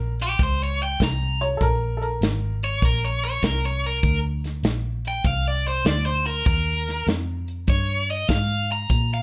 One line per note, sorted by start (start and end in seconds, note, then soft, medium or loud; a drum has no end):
0.00 0.37 A#1 medium
0.00 0.11 A#4 medium
0.20 0.40 G4 medium
0.20 closed hi-hat medium
0.39 0.98 C#2 medium
0.39 0.61 C5 medium
0.39 kick medium
0.39 closed hi-hat medium
0.64 0.81 C#5 medium
0.81 1.01 G5 medium
0.81 closed hi-hat medium
1.00 1.59 C2 medium
1.00 1.42 A#5 medium
1.00 kick medium
1.00 snare loud
1.00 closed hi-hat medium
1.41 1.60 C#5 medium
1.41 closed hi-hat medium
1.57 2.19 A#1 medium
1.57 1.62 A4 medium
1.57 kick medium
1.57 closed hi-hat medium
1.62 2.00 A#4 loud
1.97 2.03 A4 medium
2.02 2.54 A#4 medium
2.02 closed hi-hat medium
2.21 2.80 G#1 medium
2.21 snare loud
2.21 closed hi-hat medium
2.63 2.83 C#5 medium
2.63 closed hi-hat medium
2.82 3.41 A#1 medium
2.82 3.03 A#4 medium
2.82 kick loud
2.82 closed hi-hat medium
3.05 3.23 C#5 medium
3.24 3.43 C#5 medium
3.24 closed hi-hat medium
3.42 4.02 C2 medium
3.42 3.63 A#4 medium
3.42 kick medium
3.42 snare loud
3.42 closed hi-hat medium
3.65 3.84 C#5 medium
3.84 4.18 A#4 loud
3.84 closed hi-hat medium
4.03 4.62 D2 medium
4.03 kick loud
4.03 closed hi-hat medium
4.44 snare soft
4.44 closed hi-hat medium
4.63 5.23 A#1 medium
4.63 snare loud
4.63 closed hi-hat medium
5.05 5.26 G5 medium
5.05 closed hi-hat medium
5.24 5.84 C2 medium
5.24 5.46 F5 medium
5.24 kick medium
5.24 closed hi-hat medium
5.48 5.66 D5 medium
5.66 5.86 C5 medium
5.66 closed hi-hat medium
5.85 6.44 D2 medium
5.85 6.06 D5 medium
5.85 snare loud
5.85 closed hi-hat medium
6.06 6.26 C5 medium
6.26 6.45 A#4 medium
6.26 closed hi-hat medium
6.46 7.06 D#2 medium
6.46 7.05 A#4 medium
6.46 kick loud
6.46 closed hi-hat medium
6.87 snare soft
6.87 closed hi-hat medium
7.07 7.66 F2 medium
7.07 snare loud
7.07 closed hi-hat medium
7.48 closed hi-hat medium
7.67 8.27 G2 medium
7.67 8.08 C#5 medium
7.67 kick loud
7.67 closed hi-hat medium
8.09 8.29 D#5 medium
8.09 closed hi-hat medium
8.29 8.88 G#2 medium
8.29 8.69 F5 medium
8.29 kick medium
8.29 snare loud
8.29 closed hi-hat medium
8.70 9.10 A#5 medium
8.70 closed hi-hat medium
8.90 9.22 A#2 loud
8.90 kick loud
8.90 closed hi-hat medium
9.14 9.22 F5 medium